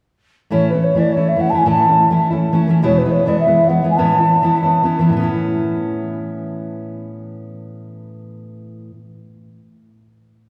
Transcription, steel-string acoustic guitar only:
0.50 0.73 A2 medium
0.50 0.74 E3 medium
0.50 0.74 A3 medium
0.50 0.73 C#4 medium
0.50 0.71 E4 medium
0.73 0.94 A3 soft
0.73 0.95 C#4 soft
0.73 0.96 E4 soft
0.95 1.16 E3 soft
0.95 1.17 A3 soft
0.95 1.16 C#4 medium
0.95 1.16 E4 medium
1.17 1.36 A3 soft
1.17 1.37 C#4 soft
1.17 1.38 E4 soft
1.36 1.51 E3 soft
1.36 1.51 A3 soft
1.36 1.53 C#4 medium
1.36 1.53 E4 medium
1.52 1.64 E3 medium
1.52 1.65 A3 medium
1.52 1.65 C#4 soft
1.52 1.65 E4 medium
1.65 1.88 A2 medium
1.65 1.88 E3 medium
1.65 1.89 A3 medium
1.65 1.88 C#4 medium
1.65 1.87 E4 medium
1.88 2.09 A3 soft
1.88 2.11 C#4 soft
1.88 2.11 E4 soft
2.10 2.32 E3 medium
2.10 2.32 A3 medium
2.10 2.31 C#4 medium
2.10 2.29 E4 medium
2.31 2.52 A3 soft
2.31 2.53 C#4 soft
2.31 2.52 E4 medium
2.52 2.66 E3 medium
2.52 2.68 A3 medium
2.52 2.68 C#4 medium
2.52 2.69 E4 medium
2.68 2.81 E3 medium
2.68 2.82 A3 medium
2.68 2.82 C#4 medium
2.68 2.82 E4 medium
2.82 3.04 E2 medium
2.82 3.05 B2 medium
2.82 3.05 E3 medium
2.82 3.05 G#3 medium
2.82 3.04 B3 medium
2.82 3.04 E4 medium
3.05 3.24 E3 soft
3.05 3.26 G#3 soft
3.05 3.27 B3 soft
3.05 3.27 E4 soft
3.26 3.47 E3 medium
3.26 3.47 G#3 medium
3.26 3.46 B3 medium
3.26 3.45 E4 medium
3.47 3.68 E3 soft
3.47 3.68 G#3 soft
3.47 3.69 B3 soft
3.47 3.68 E4 soft
3.69 3.82 E3 soft
3.69 3.83 G#3 soft
3.69 3.83 B3 soft
3.69 3.84 E4 medium
3.83 3.97 E3 soft
3.83 3.97 G#3 soft
3.83 3.97 B3 medium
3.83 3.98 E4 medium
3.98 4.20 A2 medium
3.98 4.20 E3 medium
3.98 4.20 B3 medium
3.98 4.19 C#4 medium
3.98 4.19 E4 medium
4.20 4.42 B3 soft
4.20 4.42 C#4 soft
4.20 4.42 E4 soft
4.43 4.63 E3 medium
4.43 4.63 B3 medium
4.43 4.63 C#4 medium
4.43 4.61 E4 medium
4.63 4.83 B3 soft
4.63 4.84 C#4 soft
4.63 4.84 E4 soft
4.83 4.98 E3 medium
4.83 4.99 B3 medium
4.83 4.99 C#4 medium
4.83 5.00 E4 medium
4.99 5.11 E3 medium
4.99 5.13 B3 medium
4.99 5.13 C#4 medium
4.99 5.13 E4 medium
5.09 8.90 A2 medium
5.09 8.91 E3 medium
5.17 8.93 B3 medium
5.17 8.95 C#4 medium
5.23 8.97 E4 medium

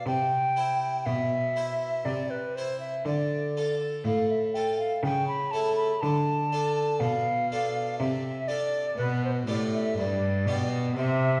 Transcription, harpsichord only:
0.07 1.02 C3 soft
0.56 1.28 E4 soft
0.56 1.28 C5 soft
1.06 2.02 B2 soft
1.56 2.28 E4 soft
1.56 2.28 C5 soft
2.06 3.02 C3 soft
2.57 2.93 E4 soft
2.57 2.93 C5 soft
3.06 4.01 D3 soft
3.57 4.28 F4 soft
3.57 4.28 A4 soft
4.05 5.00 A2 soft
4.55 4.91 F4 soft
4.55 4.91 A4 soft
5.05 5.99 C#3 soft
5.53 5.89 A3 soft
5.53 5.89 E4 soft
5.53 5.90 A4 soft
6.03 6.98 D3 soft
6.52 7.23 D4 soft
6.52 7.23 F4 soft
6.52 7.23 A4 soft
7.01 7.95 B2 soft
7.52 8.22 D4 soft
7.52 8.22 F4 soft
7.52 8.22 A4 soft
8.00 8.94 C3 soft
8.48 8.84 D4 soft
8.48 8.84 F4 soft
8.48 8.84 A4 soft
8.98 9.43 B2 soft
9.47 9.93 A2 soft
9.47 10.18 D4 soft
9.47 10.19 F4 soft
9.47 10.19 G4 soft
9.98 10.43 G2 soft
10.47 10.92 B2 soft
10.47 10.83 D4 soft
10.47 10.83 F4 soft
10.47 10.83 G4 soft
10.97 11.40 C3 soft

